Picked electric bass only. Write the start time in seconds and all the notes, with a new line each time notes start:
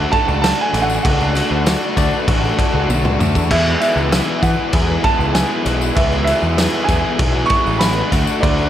0.28 C#2
0.73 A1
1.05 C#2
1.51 D2
1.97 D2
2.28 A1
2.74 C#2
2.89 B1
3.04 C#2
3.19 D2
3.35 E2
3.51 E2
3.96 C#2
4.43 E3
4.73 E2
5.19 C#2
5.66 B1
5.96 C#2
6.43 E2
6.88 E2
7.19 B1
7.66 A1
8.12 D2
8.43 D2